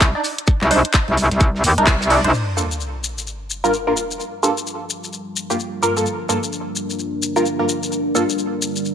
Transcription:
Already playing: C2
0.00 kick, snare, clap, closed hi-hat, shaker
0.15 D4 D#4 D5
0.24 open hi-hat, shaker
0.38 closed hi-hat
0.47 kick, closed hi-hat, shaker
0.61 C2, snare, clap
0.71 D4 D#4 C5, open hi-hat
0.85 closed hi-hat
0.93 kick, snare, clap, closed hi-hat, shaker
1.08 C2, closed hi-hat
1.17 open hi-hat, shaker
1.31 C2, snare, closed hi-hat
1.40 kick, closed hi-hat, shaker
1.55 snare
1.64 D#2, open hi-hat, shaker
1.78 C2 D4 D#4 A#4, closed hi-hat
1.87 kick, snare, clap, closed hi-hat, shaker
2.01 snare, shaker
2.10 D4 D#4 D5, open hi-hat
2.24 C2 D4 D#4 C5, closed hi-hat
2.34 G3 D4 F4 A#4, sub drop, shaker
2.57 G2 A#3 F4 A4, shaker
2.71 shaker
2.81 shaker
3.04 shaker
3.18 shaker
3.27 shaker
3.50 shaker
3.64 G2 A#3 F4 A#4, shaker
3.74 shaker
3.87 G2 A#3 F4 A#4
3.97 shaker
4.11 shaker
4.20 shaker
4.43 G2 A#3 F4 A4, shaker
4.57 shaker
4.67 shaker
4.90 shaker
5.04 shaker
5.13 shaker
5.36 shaker
5.50 G2 A#3 F4 G4, shaker
5.60 shaker
5.82 G2 A#3 F4 A#4, shaker
5.97 G2 A#3 F4 A4, shaker
6.06 shaker
6.29 G2 A#3 F4 A4, shaker
6.43 shaker
6.53 shaker
6.76 shaker
6.90 shaker
6.99 shaker
7.22 shaker
7.36 G2 A#3 F4 A#4, shaker
7.46 shaker
7.59 G2 A#3 F4 A#4
7.69 shaker
7.83 shaker
7.92 shaker
8.15 G2 A#3 F4 A4, shaker
8.30 shaker
8.39 shaker
8.62 shaker
8.76 shaker
8.85 shaker

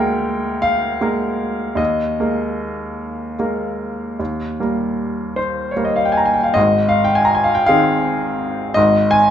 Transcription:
Already playing: D2 G#3 A#3 A#4 G5
0.62 F5
1.01 G#3 A#3 A#4
1.75 D#2 D#5
2.20 G#3 A#3 A#4
3.39 G#3 A#3 A#4
4.19 D#2
4.60 G3 A#3 A#4
5.36 C5
5.71 C#5
5.76 G3 A#3 A#4
5.85 D#5
5.96 F5
6.05 G5
6.12 G#5
6.17 A#5
6.26 G#5
6.34 G5
6.43 F5
6.54 G#1 G#2 D#5
6.89 F5
7.04 G5
7.15 G#5
7.25 A#5
7.35 G#5
7.44 F5
7.55 G5
7.66 D#3 C4 G#4 F5
8.74 G#1 G#2 D#5
9.11 G#5

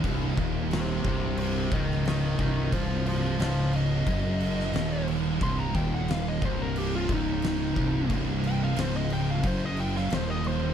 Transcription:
0.04 C1 C2, kick, crash
0.37 D#1 D#2, kick, crash
0.71 G4 C5, snare, crash
1.04 C1 C2 G4 C5, kick, crash
1.37 G4 C5, crash
1.71 C#1 C#2 A#4 D#5, kick, crash
1.91 snare
2.05 A#4 D#5, snare, crash
2.39 C1 C2 A#4 D#5, kick, crash
2.72 C1 C2 C5 F5, kick, crash
3.06 C5 F5, crash
3.39 C#1 C#2 C5 F5, snare, crash
3.73 D#5, crash
4.07 F#1 F#2, kick, crash
4.40 crash
4.59 snare
4.73 D#1 D#2, snare, crash
5.08 crash
5.41 C1 C2 C6, kick, crash
5.60 A#5
5.75 D#1 D#2 G5, kick, crash
5.94 F#5
6.08 F5, snare, crash
6.28 D#5
6.42 C1 C2 C5, kick, crash
6.62 A#4
6.76 G4, crash
6.95 F4
7.09 C#1 C#2, kick, crash
7.13 D#4
7.42 snare, crash
7.47 D#4
7.76 C1 C2, kick, crash
8.10 C1 C2, kick, crash
8.44 G5, crash
8.64 F5
8.76 C#1 C#2 C5, snare, crash
8.97 D#5
9.10 G5, crash
9.31 F5
9.43 F#1 F#2 C5, kick, crash
9.65 D#5
9.77 G5, crash
9.96 F5, snare
10.10 D#1 D#2 C5, snare, crash
10.30 D#5
10.44 C5, crash

